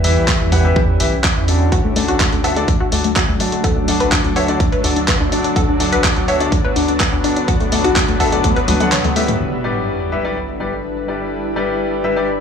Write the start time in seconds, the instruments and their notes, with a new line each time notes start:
Already playing: analog synth bass E2, ambient pad G3 C#4 E4
0.04 grand piano E3 E4 G4 B4 E5, open hi-hat
0.16 analog synth bass B1
0.28 kick, clap
0.40 analog synth bass E2
0.52 grand piano E3 E4 G4 B4 F#5, kick, open hi-hat, cowbell
0.64 grand piano E3 E4 G4 B4 E5
0.76 analog synth bass E2, kick
1.00 analog synth bass B1, grand piano E3 E4 G4 B4 E5, open hi-hat
1.24 kick, clap
1.36 analog synth bass E2
1.48 grand piano D3 D4 F#4 A4 D5, open hi-hat
1.72 analog synth bass D2, ambient pad F#3 A3 D4, synth arpeggio sound F#4, kick, closed hi-hat, cowbell
1.84 synth arpeggio sound A3
1.96 grand piano D3 D4 F#4 A4 D5, synth arpeggio sound A3, open hi-hat
2.08 analog synth bass A1, synth arpeggio sound F#4, closed hi-hat
2.20 synth arpeggio sound A3, kick, clap, closed hi-hat
2.32 analog synth bass D2, synth arpeggio sound A3, closed hi-hat
2.44 grand piano D3 D4 F#4 A4 E5, synth arpeggio sound A4, open hi-hat, cowbell
2.56 grand piano D3 D4 F#4 A4 D5, synth arpeggio sound A3, closed hi-hat
2.68 analog synth bass D2, synth arpeggio sound A3, kick, closed hi-hat
2.80 synth arpeggio sound F#4
2.92 analog synth bass D2, grand piano D3 D4 F#4 A4 D5, synth arpeggio sound A3, open hi-hat
3.04 synth arpeggio sound A3, closed hi-hat
3.16 synth arpeggio sound F#4, kick, clap, closed hi-hat
3.28 analog synth bass D2, synth arpeggio sound A3
3.40 grand piano D3 D4 F#4 A4 D5, synth arpeggio sound A3, open hi-hat
3.52 synth arpeggio sound A3, closed hi-hat
3.64 analog synth bass D2, synth arpeggio sound A4, kick, closed hi-hat, cowbell
3.76 synth arpeggio sound D4
3.88 grand piano D3 D4 F#4 A4 D5, synth arpeggio sound D4, open hi-hat
4.00 analog synth bass A1, synth arpeggio sound B4, closed hi-hat
4.12 synth arpeggio sound D4, kick, clap, closed hi-hat
4.24 analog synth bass D2, synth arpeggio sound D4, closed hi-hat
4.36 grand piano D3 D4 F#4 A4 E5, synth arpeggio sound C#5, open hi-hat, cowbell
4.48 grand piano D3 D4 F#4 A4 D5, synth arpeggio sound D4, closed hi-hat
4.60 analog synth bass D2, synth arpeggio sound D4, kick, closed hi-hat
4.72 synth arpeggio sound B4, closed hi-hat
4.84 analog synth bass D2, grand piano D3 D4 F#4 A4 D5, synth arpeggio sound D4, open hi-hat
4.96 synth arpeggio sound D4, closed hi-hat
5.08 synth arpeggio sound B4, kick, clap, closed hi-hat
5.20 analog synth bass D2, synth arpeggio sound D4
5.32 grand piano D3 D4 F#4 A4 D5, synth arpeggio sound D4, open hi-hat
5.44 synth arpeggio sound D4, closed hi-hat
5.56 analog synth bass D2, ambient pad B3, synth arpeggio sound A4, kick, closed hi-hat, cowbell
5.69 synth arpeggio sound D4
5.80 grand piano D3 D4 F#4 A4 D5, synth arpeggio sound D4, open hi-hat
5.92 analog synth bass A1, synth arpeggio sound B4, closed hi-hat
6.04 synth arpeggio sound D4, kick, clap, closed hi-hat
6.16 analog synth bass D2, synth arpeggio sound D4, closed hi-hat
6.28 grand piano D3 D4 F#4 A4 E5, synth arpeggio sound C#5, open hi-hat, cowbell
6.40 grand piano D3 D4 F#4 A4 D5, synth arpeggio sound D4, closed hi-hat
6.52 analog synth bass D2, synth arpeggio sound D4, kick, closed hi-hat
6.64 synth arpeggio sound B4
6.76 analog synth bass D2, grand piano D3 D4 F#4 A4 D5, synth arpeggio sound D4, open hi-hat
6.88 synth arpeggio sound D4, closed hi-hat
7.00 synth arpeggio sound B4, kick, clap, closed hi-hat
7.12 analog synth bass D2, synth arpeggio sound D4
7.24 grand piano D3 D4 F#4 A4 D5, synth arpeggio sound D4, open hi-hat
7.36 synth arpeggio sound D4, closed hi-hat
7.48 analog synth bass D2, synth arpeggio sound F#4, kick, closed hi-hat, cowbell
7.60 synth arpeggio sound A3, closed hi-hat
7.72 grand piano D3 D4 F#4 A4 D5, synth arpeggio sound A3, open hi-hat
7.84 analog synth bass A1, synth arpeggio sound F#4, closed hi-hat, high conga
7.96 synth arpeggio sound A3, kick, clap, closed hi-hat
8.08 analog synth bass D2, synth arpeggio sound A3, closed hi-hat
8.20 grand piano D3 D4 F#4 A4 E5, synth arpeggio sound A4, kick, open hi-hat, cowbell
8.32 grand piano D3 D4 F#4 A4 D5, synth arpeggio sound A3, closed hi-hat
8.44 analog synth bass D2, synth arpeggio sound A3, kick, closed hi-hat
8.56 synth arpeggio sound B4, closed hi-hat
8.68 analog synth bass D2, grand piano D3 D4 F#4 A4 B4, synth arpeggio sound A3, open hi-hat, high tom
8.80 grand piano D3 D4 F#4 A4 F#5, synth arpeggio sound A3, closed hi-hat, high tom
8.92 synth arpeggio sound C#5, clap, closed hi-hat, mid tom
9.04 analog synth bass D2, synth arpeggio sound A3, closed hi-hat, mid tom
9.16 grand piano G3 E4 G4 B4 E5, synth arpeggio sound A3, open hi-hat
9.28 synth arpeggio sound A3, closed hi-hat, mid tom
9.40 analog synth bass G1, ambient pad G3 D4 E4 A4 B4, crash, sub drop
9.64 grand piano G3 E4 G4 B4 D5
10.12 grand piano G3 E4 G4 B4 E5
10.24 grand piano G3 E4 G4 B4 D5
10.60 grand piano G3 E4 G4 B4 D5
11.08 grand piano G3 E4 G4 B4 D5
11.56 grand piano G3 E4 G4 B4 D5
12.04 grand piano G3 E4 G4 B4 E5
12.16 grand piano G3 E4 G4 B4 D5